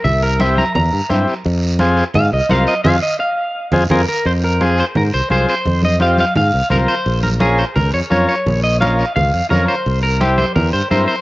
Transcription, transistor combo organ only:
X:1
M:4/4
L:1/8
Q:1/4=171
K:Fm
V:1 name="Transistor combo organ"
z2 [C=EG] z3 [CEG] z | z2 [CFA] z3 [CFB] z | [CFA] z4 [CFA] [CFA] z | z2 [CFA] z3 [CFA] z |
z2 [CFG] z3 [CFB] z | z2 [DFB] z3 [DFB] z | z2 [DFB] z3 [DFB] z | z2 [C=EG] z3 [CEB] z |]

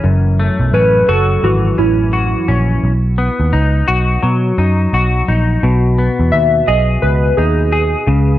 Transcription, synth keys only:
X:1
M:4/4
L:1/8
Q:"Swing 16ths" 1/4=86
K:E
V:1 name="Synth keys"
z2 B A F E2 z | z8 | z2 e d B G2 z |]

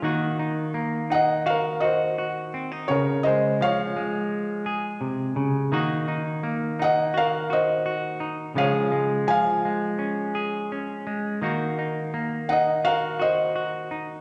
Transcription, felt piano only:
X:1
M:4/4
L:1/8
Q:1/4=84
K:Ebdor
V:1 name="Felt piano"
z3 [eg] [Bf] [ce]2 z | [Bd] [ce] [df]3 z3 | z3 [eg] [Bf] [ce]2 z | [df]2 [fa]3 z3 |
z3 [eg] [Bf] [ce]2 z |]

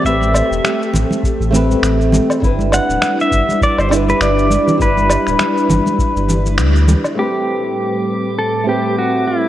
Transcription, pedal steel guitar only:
X:1
M:4/4
L:1/16
Q:"Swing 16ths" 1/4=101
K:Am
V:1 name="Pedal steel guitar"
e6 z8 z2 | z2 ^f3 e3 d c2 B d4 | B12 z4 | G8 A2 G2 ^F2 E2 |]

